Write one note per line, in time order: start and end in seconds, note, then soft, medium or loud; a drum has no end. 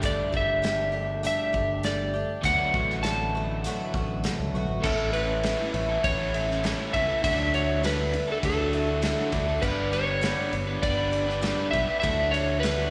0.00 0.21 G1 loud
0.00 2.11 G3 medium
0.00 0.33 G3 medium
0.00 2.43 A3 medium
0.00 0.33 A3 medium
0.00 2.12 D4 loud
0.00 0.33 D4 medium
0.00 2.13 G4 loud
0.00 0.31 G4 medium
0.00 kick loud
0.00 closed hi-hat medium
0.05 0.33 D5 medium
0.32 1.27 G1 medium
0.32 0.62 A3 soft
0.32 0.62 D4 soft
0.32 0.63 G4 medium
0.32 kick medium
0.37 1.21 E5 medium
0.62 0.93 G3 medium
0.62 0.93 A3 medium
0.62 0.92 D4 medium
0.62 0.91 G4 medium
0.62 snare loud
0.62 closed hi-hat medium
0.92 1.22 A3 soft
0.92 1.23 D4 medium
0.92 1.23 G4 medium
1.23 1.54 G3 medium
1.23 1.54 A3 medium
1.23 1.54 D4 medium
1.23 1.52 G4 medium
1.23 1.81 E5 loud
1.23 closed hi-hat medium
1.53 2.24 G1 medium
1.53 1.84 A3 soft
1.53 1.84 D4 soft
1.53 1.83 G4 medium
1.53 kick medium
1.83 2.14 G3 medium
1.83 2.14 A3 medium
1.83 2.14 D4 medium
1.83 2.12 G4 medium
1.83 2.40 D5 medium
1.83 snare medium
1.83 closed hi-hat medium
2.14 2.45 A3 soft
2.14 2.44 D4 soft
2.14 2.44 G4 soft
2.42 2.56 D2 loud
2.42 4.81 D3 medium
2.42 2.74 D3 medium
2.42 4.81 F#3 loud
2.42 2.75 F#3 medium
2.42 4.81 A3 loud
2.42 4.82 D4 medium
2.42 4.82 F#4 loud
2.42 3.06 F#5 loud
2.42 kick loud
2.42 closed hi-hat medium
2.46 2.75 A3 medium
2.46 2.75 B3 medium
2.46 2.74 F#4 medium
2.74 3.67 A1 medium
2.74 3.04 B3 medium
2.74 3.04 F#4 medium
2.74 kick medium
2.78 3.03 A3 soft
2.90 snare soft
3.03 3.33 F#3 medium
3.03 3.34 A3 medium
3.03 3.34 B3 medium
3.03 3.34 F#4 medium
3.03 4.19 A5 loud
3.03 snare loud
3.03 closed hi-hat medium
3.35 3.65 A3 soft
3.35 3.65 B3 medium
3.35 3.64 F#4 medium
3.64 3.95 D3 medium
3.64 3.95 F#3 medium
3.64 3.95 A3 medium
3.64 3.95 B3 loud
3.64 3.94 F#4 medium
3.64 closed hi-hat medium
3.94 4.29 A1 medium
3.94 4.25 A3 soft
3.94 4.25 B3 medium
3.94 4.24 F#4 medium
3.94 kick medium
4.24 4.54 F#3 medium
4.24 4.55 A3 medium
4.24 4.55 B3 medium
4.24 4.54 F#4 medium
4.24 snare loud
4.24 closed hi-hat medium
4.40 4.53 C#2 medium
4.54 4.67 B1 medium
4.54 4.85 A3 medium
4.54 4.84 B3 medium
4.54 4.84 F#4 medium
4.69 4.82 A1 medium
4.81 5.54 A1 loud
4.81 5.42 A2 medium
4.81 5.11 A3 loud
4.81 5.12 C#4 medium
4.81 5.13 E4 medium
4.81 5.11 A4 medium
4.81 5.14 A4 medium
4.81 kick loud
4.81 crash loud
4.85 5.14 A2 medium
4.85 5.14 E3 medium
4.85 5.14 B3 medium
4.85 5.15 C#4 medium
4.85 5.14 E4 medium
5.12 5.44 A3 medium
5.12 5.43 C#4 medium
5.12 5.45 E4 medium
5.12 5.44 E4 medium
5.12 5.45 A4 medium
5.12 5.99 B4 medium
5.12 ride medium
5.16 5.45 B3 soft
5.16 5.45 C#4 medium
5.43 5.88 A2 medium
5.43 5.74 A2 medium
5.43 5.75 E3 medium
5.43 5.75 A3 medium
5.43 5.75 B3 medium
5.43 5.60 C#4 medium
5.43 5.60 E4 medium
5.43 5.73 E4 medium
5.43 5.58 A4 loud
5.43 snare loud
5.43 ride medium
5.47 5.74 C#4 medium
5.59 5.74 C#4 medium
5.59 5.76 E4 medium
5.59 5.75 A4 medium
5.74 5.97 A1 medium
5.74 6.04 B3 soft
5.74 6.04 C#4 medium
5.74 6.04 E4 medium
5.74 muted overdriven electric guitar stroke soft
5.74 ride medium
5.89 6.19 C#4 medium
5.89 6.18 E4 medium
5.89 6.17 A4 medium
6.04 6.73 A1 medium
6.04 6.33 E3 medium
6.04 6.34 B3 medium
6.04 6.34 C#4 medium
6.04 6.33 E4 medium
6.04 6.96 C#5 loud
6.04 kick loud
6.04 ride medium
6.18 6.50 C#4 medium
6.18 6.48 E4 medium
6.18 6.47 A4 medium
6.34 6.64 B3 soft
6.34 6.64 C#4 soft
6.34 6.64 E4 medium
6.34 ride medium
6.48 6.63 C#4 medium
6.48 6.64 E4 medium
6.48 6.64 A4 medium
6.48 snare soft
6.62 7.08 A2 medium
6.62 6.93 A2 medium
6.62 6.94 E3 medium
6.62 6.91 A3 medium
6.62 6.94 B3 medium
6.62 6.79 C#4 loud
6.62 6.94 C#4 medium
6.62 6.78 E4 loud
6.62 6.93 E4 medium
6.62 6.76 A4 loud
6.62 snare loud
6.62 ride medium
6.77 6.93 C#4 medium
6.77 6.94 E4 medium
6.77 6.95 A4 medium
6.93 7.05 C#2 loud
6.93 7.21 A3 medium
6.93 7.10 C#4 medium
6.93 7.25 C#4 medium
6.93 7.24 E4 medium
6.93 7.09 E4 medium
6.93 7.07 A4 medium
6.93 7.23 E5 loud
6.93 kick medium
6.93 ride medium
6.97 7.25 B3 soft
7.08 7.23 C#4 medium
7.08 7.22 E4 medium
7.08 7.21 A4 medium
7.23 8.16 D2 loud
7.23 7.51 D3 loud
7.23 7.54 D3 medium
7.23 7.54 F#3 medium
7.23 7.54 A3 medium
7.23 7.53 D4 loud
7.23 7.54 D4 medium
7.23 7.53 E4 medium
7.23 7.54 F#4 loud
7.23 7.55 A4 loud
7.23 7.54 E5 loud
7.23 kick loud
7.23 ride loud
7.53 7.81 D3 medium
7.53 7.83 A3 soft
7.53 7.83 D4 medium
7.53 7.83 D4 soft
7.53 7.83 E4 medium
7.53 7.83 F#4 medium
7.53 7.83 A4 medium
7.53 7.85 C#5 medium
7.53 ride medium
7.82 8.13 D3 medium
7.82 8.13 F#3 medium
7.82 8.13 A3 medium
7.82 8.00 D4 medium
7.82 8.14 D4 medium
7.82 8.12 E4 loud
7.82 7.98 F#4 loud
7.82 7.97 A4 loud
7.82 8.31 B4 medium
7.82 snare loud
7.82 ride loud
7.98 8.14 D4 medium
7.98 8.14 F#4 medium
7.98 8.14 A4 medium
8.13 8.42 A3 soft
8.13 8.43 D4 medium
8.13 8.43 E4 medium
8.13 muted overdriven electric guitar stroke soft
8.13 ride medium
8.28 8.61 D4 medium
8.28 8.58 F#4 medium
8.28 8.57 A4 medium
8.32 8.37 A4 medium
8.43 9.13 D2 medium
8.43 8.73 F#3 medium
8.43 8.73 A3 medium
8.43 8.74 D4 medium
8.43 8.73 E4 medium
8.43 9.30 A4 medium
8.43 kick loud
8.43 ride loud
8.58 8.90 D4 medium
8.58 8.87 F#4 medium
8.58 8.87 A4 medium
8.73 9.02 A3 soft
8.73 9.02 D4 medium
8.73 9.02 E4 medium
8.73 ride medium
8.88 9.03 D4 medium
8.88 9.03 F#4 medium
8.88 9.04 A4 medium
9.02 9.32 D3 medium
9.02 9.31 D3 medium
9.02 9.33 F#3 medium
9.02 9.33 A3 medium
9.02 9.32 D4 medium
9.02 9.19 D4 loud
9.02 9.31 E4 medium
9.02 9.18 F#4 medium
9.02 9.16 A4 loud
9.02 snare loud
9.02 ride loud
9.17 9.33 D4 medium
9.17 9.32 F#4 medium
9.17 9.33 A4 medium
9.32 9.56 D2 loud
9.32 9.61 D3 medium
9.32 9.62 A3 medium
9.32 9.62 D4 medium
9.32 9.49 D4 medium
9.32 9.63 E4 medium
9.32 9.47 F#4 medium
9.32 9.45 A4 medium
9.32 kick medium
9.32 ride medium
9.46 9.62 D4 medium
9.46 9.61 F#4 medium
9.46 9.60 A4 medium
9.61 10.33 G1 loud
9.61 9.93 G2 medium
9.61 9.93 D3 medium
9.61 9.90 G3 loud
9.61 9.92 G3 medium
9.61 9.92 B3 medium
9.61 9.93 B3 loud
9.61 9.92 D4 medium
9.61 9.91 D4 medium
9.61 9.90 G4 medium
9.61 9.93 B4 medium
9.61 9.93 B4 loud
9.61 kick loud
9.61 crash loud
9.92 10.20 G3 medium
9.92 10.21 G3 soft
9.92 10.21 B3 soft
9.92 10.22 B3 medium
9.92 10.21 D4 medium
9.92 10.22 D4 medium
9.92 10.22 G4 medium
9.92 10.23 B4 medium
9.92 10.82 C#5 medium
9.92 ride medium
10.21 10.52 G2 medium
10.21 10.52 D3 medium
10.21 10.52 G3 medium
10.21 10.53 G3 medium
10.21 10.53 B3 medium
10.21 10.37 B3 medium
10.21 10.39 D4 medium
10.21 10.52 D4 medium
10.21 10.51 G4 medium
10.21 10.35 B4 loud
10.21 snare loud
10.21 ride loud
10.36 10.53 B3 medium
10.36 10.54 D4 medium
10.36 10.53 B4 medium
10.52 10.76 G1 medium
10.52 10.82 G3 medium
10.52 10.83 B3 medium
10.52 10.83 D4 medium
10.52 10.83 G4 medium
10.52 muted overdriven electric guitar stroke medium
10.52 ride medium
10.67 10.97 B3 medium
10.67 10.99 D4 medium
10.67 10.96 B4 medium
10.82 11.53 G1 loud
10.82 11.13 G3 medium
10.82 11.12 B3 medium
10.82 11.11 D4 medium
10.82 11.10 G4 medium
10.82 11.70 D5 loud
10.82 kick loud
10.82 ride loud
10.97 11.27 B3 medium
10.97 11.28 D4 medium
10.97 11.26 B4 medium
11.11 11.41 G3 soft
11.11 11.41 B3 medium
11.11 11.42 D4 medium
11.11 11.41 G4 medium
11.11 ride medium
11.27 11.43 B3 medium
11.27 11.42 D4 medium
11.27 11.44 B4 medium
11.27 snare soft
11.41 11.72 G2 medium
11.41 11.73 D3 medium
11.41 11.73 G3 medium
11.41 11.71 G3 loud
11.41 11.73 B3 medium
11.41 11.57 B3 medium
11.41 11.73 D4 medium
11.41 11.58 D4 loud
11.41 11.72 G4 medium
11.41 11.55 B4 loud
11.41 snare loud
11.41 ride medium
11.57 11.72 B3 medium
11.57 11.71 D4 medium
11.57 11.73 B4 medium
11.71 11.85 B1 loud
11.71 12.01 G3 medium
11.71 11.88 B3 medium
11.71 12.03 B3 soft
11.71 11.89 D4 medium
11.71 12.02 D4 medium
11.71 12.03 G4 medium
11.71 11.86 B4 medium
11.71 11.99 E5 loud
11.71 kick medium
11.71 ride medium
11.75 12.03 G3 soft
11.88 12.02 B3 medium
11.88 12.02 D4 medium
11.88 12.01 B4 medium
12.00 12.32 D3 medium
12.00 12.31 D3 medium
12.00 12.33 F#3 medium
12.00 12.33 A3 medium
12.00 12.33 D4 medium
12.00 12.33 D4 loud
12.00 12.32 E5 loud
12.00 kick loud
12.00 ride medium
12.04 12.90 D2 loud
12.04 12.32 E4 medium
12.04 12.33 F#4 loud
12.04 12.34 A4 loud
12.31 12.60 D3 medium
12.31 12.61 D4 medium
12.31 12.64 D4 medium
12.31 12.63 E4 medium
12.31 12.62 F#4 medium
12.31 12.63 A4 medium
12.31 12.60 C#5 loud
12.31 ride medium
12.36 12.64 A3 soft
12.60 12.90 D3 medium
12.60 12.90 F#3 medium
12.60 12.78 D4 medium
12.60 12.77 F#4 loud
12.60 12.75 A4 loud
12.60 12.90 B4 loud
12.60 ride loud
12.64 12.90 A3 medium
12.64 12.90 D4 medium
12.64 12.90 E4 medium
12.64 snare loud
12.76 12.90 D4 medium
12.76 12.90 F#4 medium
12.76 12.90 A4 medium